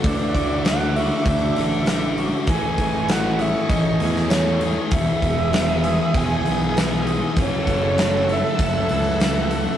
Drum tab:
HH |o-o-o-o-o-o-o-o-|o-o-o-o-o-o-o-o-|o-o-o-o-o-o-o-o-|o-o-o-o-o-o-o-o-|
SD |----o-----o-o---|----o-----ooo---|----o-------o---|----o-------o---|
BD |o-o-----o-------|o-o-----o-------|o-o-----o-------|o-o-----o-------|